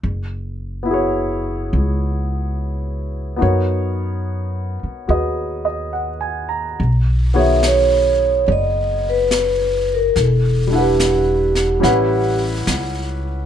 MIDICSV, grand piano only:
0, 0, Header, 1, 2, 480
1, 0, Start_track
1, 0, Key_signature, 5, "major"
1, 0, Tempo, 841515
1, 19, Time_signature, 4, 2, 24, 8
1, 7676, End_track
2, 0, Start_track
2, 0, Title_t, "Grand piano"
2, 0, Program_c, 0, 0
2, 119, Control_c, 0, 64, 127
2, 473, Note_on_c, 0, 59, 38
2, 488, Note_on_c, 0, 64, 36
2, 505, Note_on_c, 0, 66, 35
2, 518, Note_on_c, 0, 68, 38
2, 535, Note_on_c, 0, 73, 44
2, 1910, Note_off_c, 0, 59, 0
2, 1919, Note_on_c, 0, 59, 40
2, 1926, Note_off_c, 0, 66, 0
2, 1929, Note_on_c, 0, 63, 36
2, 1935, Note_off_c, 0, 64, 0
2, 1935, Note_on_c, 0, 66, 39
2, 1941, Note_off_c, 0, 73, 0
2, 1942, Note_on_c, 0, 70, 36
2, 1949, Control_c, 0, 64, 0
2, 1950, Note_off_c, 0, 68, 0
2, 1950, Note_on_c, 0, 73, 45
2, 2042, Control_c, 0, 64, 127
2, 2887, Note_off_c, 0, 66, 0
2, 2895, Note_on_c, 0, 66, 32
2, 2900, Note_on_c, 0, 68, 31
2, 2908, Note_on_c, 0, 71, 31
2, 2911, Note_on_c, 0, 75, 35
2, 3214, Note_off_c, 0, 75, 0
2, 3223, Note_on_c, 0, 75, 36
2, 3381, Note_on_c, 0, 78, 32
2, 3476, Note_off_c, 0, 75, 0
2, 3540, Note_on_c, 0, 80, 37
2, 3690, Note_off_c, 0, 78, 0
2, 3700, Note_on_c, 0, 82, 35
2, 3795, Note_off_c, 0, 80, 0
2, 3857, Note_off_c, 0, 59, 0
2, 3862, Note_off_c, 0, 63, 0
2, 3866, Note_off_c, 0, 66, 0
2, 3868, Note_off_c, 0, 68, 0
2, 3868, Note_off_c, 0, 70, 0
2, 3872, Note_off_c, 0, 71, 0
2, 3873, Note_off_c, 0, 73, 0
2, 3877, Control_c, 0, 64, 0
2, 3956, Note_off_c, 0, 82, 0
2, 3986, Control_c, 0, 64, 127
2, 4186, Note_on_c, 0, 59, 42
2, 4189, Note_on_c, 0, 51, 41
2, 4190, Note_on_c, 0, 66, 41
2, 4192, Note_on_c, 0, 68, 38
2, 4196, Note_on_c, 0, 73, 48
2, 5784, Note_off_c, 0, 59, 0
2, 5786, Note_off_c, 0, 51, 0
2, 5786, Note_off_c, 0, 66, 0
2, 5788, Note_off_c, 0, 68, 0
2, 5790, Note_off_c, 0, 73, 0
2, 5798, Control_c, 0, 64, 0
2, 5916, Control_c, 0, 64, 127
2, 6087, Note_on_c, 0, 55, 37
2, 6105, Note_on_c, 0, 62, 37
2, 6117, Note_on_c, 0, 64, 36
2, 6134, Note_on_c, 0, 78, 37
2, 6150, Note_on_c, 0, 71, 44
2, 6721, Note_off_c, 0, 55, 0
2, 6729, Note_on_c, 0, 55, 46
2, 6734, Note_off_c, 0, 64, 0
2, 6737, Note_on_c, 0, 61, 43
2, 6741, Note_off_c, 0, 62, 0
2, 6743, Note_on_c, 0, 64, 44
2, 6744, Note_off_c, 0, 78, 0
2, 6751, Note_off_c, 0, 71, 0
2, 6753, Control_c, 0, 64, 0
2, 6753, Note_on_c, 0, 78, 46
2, 6760, Note_on_c, 0, 71, 50
2, 6852, Control_c, 0, 64, 127
2, 7676, Note_off_c, 0, 55, 0
2, 7676, Note_off_c, 0, 61, 0
2, 7676, Note_off_c, 0, 64, 0
2, 7676, Note_off_c, 0, 71, 0
2, 7676, Note_off_c, 0, 78, 0
2, 7676, End_track
0, 0, End_of_file